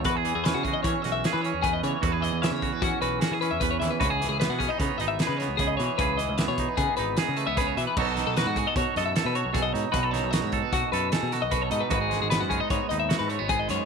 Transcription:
<<
  \new Staff \with { instrumentName = "Clean electric guitar" } { \time 5/4 \key e \major \tempo 4 = 152 b'16 gis'8 gis'16 b'16 fis'16 gis'16 dis''16 cis''8 dis''16 e''8 b'16 cis''8 gis'16 dis''16 cis''8 | b'8 dis''8 e''16 cis''8 b'16 fis'8 b'8 gis'8 b'16 e''16 b'16 cis''16 e''16 b'16 | b'16 gis'8 gis'16 b'16 fis'16 gis'16 dis''16 cis''8 dis''16 e''8 b'16 cis''8 gis'16 dis''16 cis''8 | b'8 dis''8 e''16 cis''8 b'16 gis'8 b'8 gis'8 b'16 e''16 b'16 cis''16 e''16 b'16 |
cis''16 a'8 a'16 b'16 fis'16 gis'16 dis''16 cis''8 dis''16 e''8 b'16 cis''8 gis'16 dis''16 cis''8 | b'8 cis''8 dis''16 cis''8 b'16 fis'8 b'8 gis'8 a'16 dis''16 b'16 cis''16 dis''16 b'16 | b'16 gis'8 gis'16 b'16 fis'16 gis'16 dis''16 cis''8 dis''16 e''8 b'16 cis''8 gis'16 dis''16 cis''8 | }
  \new Staff \with { instrumentName = "Clean electric guitar" } { \time 5/4 \key e \major << { fis'16 gis'8. cis'8 fis'8 cis'8 fis'8 gis'8 cis'8 b'4 | fis'16 gis'8. cis'8 fis'8 cis'8 fis'8 fis'16 gis'16 cis'8 b'4 | fis'16 gis'8. b8 cis'16 dis'16 b8 dis'8 gis'8 b8 gis'4 | gis'4 b8 dis'8 b8 dis'8 gis'8 a16 b16 gis'4 |
<dis' fis' a'>4 fis'8 fis'16 a'16 fis'8 a'8 a'8 fis'8 a'4 | fis'16 a'8. fis'8 a'8 fis'8 a'8 a'8 fis'8 fis'16 a'8. | fis'4 b8 cis'16 dis'16 b8 dis'8 fis'8 a16 b16 gis'4 | } \\ { e,8 e2.~ e8 e,8 e8 | e,8 e2.~ e8 e,8 e8 | cis8 e2.~ e8 cis8 e8 | cis8 e2.~ e8 cis8 e8 |
b,8 dis'2.~ dis'8 b,8 dis'8 | b,8 dis'2.~ dis'8 b,8 dis'8 | gis,8 gis2.~ gis8 gis,8 gis8 | } >> }
  \new Staff \with { instrumentName = "Picked electric bass" } { \clef bass \time 5/4 \key e \major e,8. e,8 cis8 r16 e16 r16 b,,8 r16 e8 e,8. cis16 r16 | e,8. e,8 cis8 r16 e16 r16 b,,8 r16 e8 e,8. dis,16 r16 | cis,8. cis,8 b,8 r16 cis16 r16 gis,,8 r16 cis8 cis,8. b,16 r16 | cis,8. cis,8 b,8 r16 cis16 r16 gis,,8 r16 cis8 cis,8. b,16 r16 |
b,,8. b,,8 gis,8 r16 b,16 r16 fis,8 r16 b,8 b,,8. gis,16 r16 | b,,8. b,,8 gis,8 r16 b,16 r16 fis,8 r16 b,8 b,,8. gis,16 r16 | gis,,8. gis,,8 fis,8 r16 gis,16 r16 dis,8 r16 gis,8 gis,,8. fis,16 r16 | }
  \new DrumStaff \with { instrumentName = "Drums" } \drummode { \time 5/4 <hh bd>8 hh8 <hh sn>8 <hh bd>8 <hh bd>8 <hh sn>8 <hh sn>8 hh8 <hh bd>8 hh8 | <hh bd>8 hh8 <hh sn>8 <hh bd>8 <hh bd>8 hh8 <hh sn>8 hh8 <hh bd>8 <hh sn>8 | <hh bd>8 <hh sn>8 <hh sn>8 <hh bd sn>8 <hh bd>8 hh8 <hh sn>8 <hh sn>8 <hh bd>8 hh8 | <hh bd>8 hh8 <hh sn>8 <hh bd>8 <hh bd>8 hh8 <hh sn>8 hh8 <hh bd>8 hh8 |
<cymc bd>8 <hh sn>8 <hh sn>8 <hh bd>8 <hh bd>8 <hh sn>8 <hh sn>8 hh8 <hh bd sn>8 hh8 | <hh bd>8 <hh sn>8 <hh sn>8 <hh bd>8 <hh bd sn>8 hh8 <hh sn>8 <hh sn>8 <hh bd>8 hh8 | <hh bd>8 <hh sn>8 <hh sn>8 <hh bd>8 <hh bd>8 hh8 <hh sn>8 hh8 <hh bd>8 <hh sn>8 | }
>>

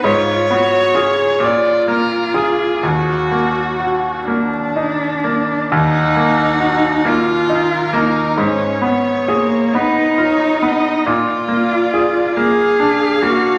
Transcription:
<<
  \new Staff \with { instrumentName = "Violin" } { \time 6/8 \key ees \minor \tempo 4. = 44 des''4. d''8 bes'8 aes'8 | ges'4. r4. | ges''4. bes'4. | des''4. ces''8 des''8 ees''8 |
d''4. f''4. | }
  \new Staff \with { instrumentName = "Cello" } { \time 6/8 \key ees \minor f'8 ges'8 aes'8 f'4. | ges'4. d'4. | ees'4. f'4 ees'8 | des'8 ces'8 bes8 ees'4. |
f'4. aes'4 ges'8 | }
  \new Staff \with { instrumentName = "Grand piano" } { \time 6/8 \key ees \minor aes,8 ces'8 <f' aes'>8 bes,8 bes8 <f' aes'>8 | ees,8 bes8 ges'8 bes8 ees'8 bes8 | ees,8 bes8 ges'8 bes8 ees'8 bes8 | aes,8 ces'8 aes'8 ces'8 f'8 ces'8 |
bes,8 bes8 aes'8 bes8 d'8 bes8 | }
>>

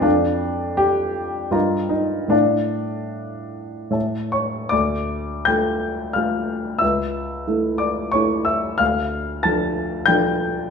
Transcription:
\new Staff \with { instrumentName = "Grand piano" } { \time 3/4 \key d \minor \tempo 4 = 89 << { d'4 g'4 f'8 ees'8 | d'2~ d'8 <cis'' cis'''>8 | <d'' d'''>4 <g'' g'''>4 <f'' f'''>4 | <e'' e'''>4. <d'' d'''>8 <cis'' cis'''>8 <e'' e'''>8 |
<f'' f'''>4 <a'' a'''>4 <g'' g'''>4 | } \\ { <f, d'' f'' a''>2 <g, bes' ees'' bes''>4 | <a, d'' f'' a''>2 <a, cis'' e'' a''>4 | d,4 <a f' a'>4 <a f' a'>4 | cis,4 <a e' a'>4 <a e' a'>4 |
d,4 <f d' a'>4 <f d' a'>4 | } >> }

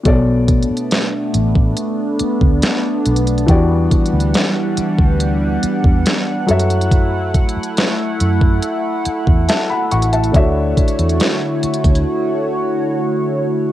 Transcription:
<<
  \new Staff \with { instrumentName = "Grand piano" } { \time 4/4 \key e \dorian \tempo 4 = 70 << { r1 | r1 | r2. <e'' a''>16 <fis'' b''>16 <fis'' cis'''>16 <e'' a''>16~ | <e'' a''>16 r2. r8. | } \\ { <b, b a' cis'' d''>1 | <e b fis' g' d''>2.~ <e b fis' g' d''>8 <fis fis' a' cis'' e''>8~ | <fis fis' a' cis'' e''>2.~ <fis fis' a' cis'' e''>8 r8 | <d d' fis' cis'' e''>1 | } >> }
  \new Staff \with { instrumentName = "Analog synth pad" } { \time 4/4 \key e \dorian << { b1 | fis''2.~ fis''8 e'8~ | e'1~ | e'1 | } \\ { <a d'>1 | <e g>2.~ <e g>8 a8~ | a1 | <d a fis' cis''>1 | } >> }
  \new Staff \with { instrumentName = "Fingered electric bass" } { \clef bass \time 4/4 \key e \dorian b,,8. r8. a,,8 r8. d,16 r8 b,,8 | e,8 r16 d,16 r8. d,8. r16 e,16 r8 fis,8~ | fis,8. r8. fis,8 r8. e,16 r8 a,,8 | d,8 r16 e,16 r8. d,16 r2 | }
  \new DrumStaff \with { instrumentName = "Drums" } \drummode { \time 4/4 \tuplet 3/2 { <hh bd>16 r16 r16 <hh bd>16 hh16 hh16 } <hh sn>8 hh16 bd16 hh8 hh16 bd16 <hh sn>8 hh32 hh32 hh32 hh32 | \tuplet 3/2 { <hh bd>16 r16 r16 <hh bd>16 hh16 hh16 } <hh sn>8 hh16 bd16 hh8 hh16 bd16 <hh sn>8 hh32 hh32 hh32 hh32 | \tuplet 3/2 { <hh bd>16 r16 r16 <hh bd>16 hh16 hh16 } <hh sn>8 hh16 bd16 hh8 hh16 bd16 <hh sn>8 hh32 hh32 hh32 hh32 | <hh bd>8 <hh bd>32 hh32 hh32 hh32 <hh sn>8 hh32 hh32 <hh bd>32 hh32 r4 r4 | }
>>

